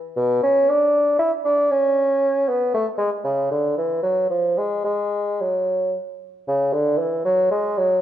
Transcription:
0.16 B2
0.43 C#4
0.69 D4
1.19 E4
1.45 D4
1.71 C#4
2.48 B3
2.74 A3
2.98 G#3
3.24 C#3
3.51 D3
3.77 E3
4.03 F#3
4.30 F3
4.58 G#3
4.85 G#3
5.41 F#3
6.48 C#3
6.73 D3
6.99 E3
7.25 F#3
7.51 G#3
7.78 F#3

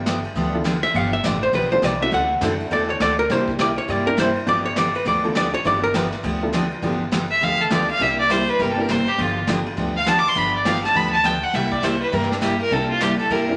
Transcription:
Already playing: G1 A3 B3 D4 F4 G4
0.06 D3 F3 B3 D4 G4, snare, hi-hat pedal, ride
0.24 ride
0.35 D2 D3 F3 B3 D4 G4, ride
0.54 A3 B3 D4 F4 A4
0.64 D3 F3 B3 D4 G4, snare, hi-hat pedal, ride
0.83 E5, ride
0.94 G1 D3 F3 B3 D4 G4 F5, ride
1.13 E5
1.23 A1 D3 F3 B3 D4 G4 D5, snare, hi-hat pedal, ride
1.43 C5
1.53 B1 D3 F3 B3 D4 G4 B4, ride
1.71 A3 B3 D4 F4 G4 C5
1.82 C2 D3 F3 B3 D4 G4 D5, snare, hi-hat pedal, ride
2.00 A3 C4 D4 E4 F#4 E5, ride
2.11 D2 D3 A3 C4 F#4 A4 F#5, ride
2.41 F#2 D3 A3 C4 D4 E4 F#4 A4, snare, hi-hat pedal, ride
2.60 ride
2.71 E2 D3 A3 C4 F#4 A4 D5, ride
2.90 C#5
3.00 D2 D3 A3 C4 F#4 A4 D5, snare, hi-hat pedal, ride
3.19 A#4
3.29 C2 C3 G3 A#3 C4 D4 E4 G4 C5, snare, ride
3.48 kick
3.59 C3 G3 A#3 E4 G4 D5, snare, hi-hat pedal, ride
3.78 C#5
3.88 G2 C3 G3 A#3 E4 G4 D5, ride
4.06 A#3 C4 D4 E4 G4 A#4
4.17 C3 G3 A#3 E4 G4 C5, snare, hi-hat pedal, ride
4.36 ride
4.46 G1 D3 F3 A3 B3 D4 F4 G4 D5, ride
4.66 C#5
4.76 D3 F3 B3 D4 G4 D5, snare, hi-hat pedal, ride
4.95 B4, ride
5.05 D2 D3 F3 B3 D4 G4 D5, ride
5.24 A3 B3 D4 F4 A4, ride
5.35 D3 F3 B3 D4 G4 D5, snare, hi-hat pedal, ride
5.53 C#5, ride
5.64 G1 D3 F3 A3 B3 D4 F4 G4 D5, ride
5.84 A#4
5.94 D3 F3 B3 D4 G4 B4, snare, hi-hat pedal, ride
6.12 snare
6.23 D2 D3 F3 B3 D4 G4, ride
6.42 A3 B3 D4 F4 A4
6.53 D3 F3 B3 D4 G4, snare, hi-hat pedal, ride
6.71 ride
6.82 G1 D3 F3 A3 B3 D4 F4 G4, ride
7.12 D3 F3 B3 D4 G4, snare, hi-hat pedal, ride
7.30 E5, ride
7.41 D2 D3 F3 B3 D4 G4 F5, ride
7.61 A4
7.70 D3 F3 A3 B3 D4 F4 G4 D5, snare, hi-hat pedal, ride
7.89 F5, ride
8.00 C2 C3 G3 A#3 C4 D4 E4 G4 E5, ride
8.19 D5
8.30 C3 G3 A#3 E4 G4 C5, snare, hi-hat pedal, ride
8.48 B4, ride
8.59 G1 C3 G3 A#3 E4 G4 A#4, ride
8.71 A4
8.77 A#3 C4 D4 E4 G4 A#4
8.89 C3 G3 A#3 E4 G4 C5, snare, hi-hat pedal, ride
9.07 G4, ride
9.18 G1 D3 F3 B3 D4 F4 G4, ride
9.47 D3 F3 A3 B3 D4 F4 G4, snare, hi-hat pedal, ride
9.66 ride
9.77 D2 D3 F3 B3 D4 G4, ride
9.96 F5
10.06 D3 F3 B3 D4 G4 A5, snare, hi-hat pedal, ride
10.19 D6
10.25 C6, ride
10.35 G1 D3 F3 B3 D4 G4 B5, ride
10.55 D5
10.65 D3 F3 A3 B3 D4 F4 G4 F5, snare, hi-hat pedal, ride
10.75 snare
10.84 A5, snare, ride
10.94 D2 D3 F3 B3 D4 G4 B5, ride
11.12 A5
11.23 D3 F3 B3 D4 G4 G5, snare, hi-hat pedal, ride
11.43 F#5
11.53 C2 C3 G3 A#3 E4 G4 E5, snare, ride
11.72 D5, kick
11.82 C3 G3 A#3 E4 G4 C5, snare, hi-hat pedal, ride
12.01 B4, ride
12.12 G2 C3 G3 A#3 E4 G4 A#4, ride
12.22 snare
12.31 D4, snare
12.41 C3 G3 A#3 E4 G4, snare, hi-hat pedal, ride
12.60 A#4, ride
12.70 C2 C3 G3 A#3 C4 D4 E4 G4 A4, ride
12.90 F4
13.01 C3 G3 A#3 E4 G4, snare, hi-hat pedal, ride
13.19 A4, ride
13.30 G2 C3 G3 A#3 E4 G4 A#4, ride
13.48 A#3 C4 D4 E4 G4

